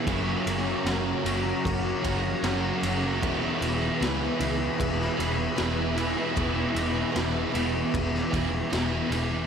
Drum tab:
RD |x-x-x-x-x-x-x-x-|x-x-x-x-x-x-x-x-|x-x-x-x-x-x-x-x-|
SD |----o-------o---|----o----o--o---|----o----o--o---|
BD |o-------o-o-----|o-------o-------|o-------o-o-----|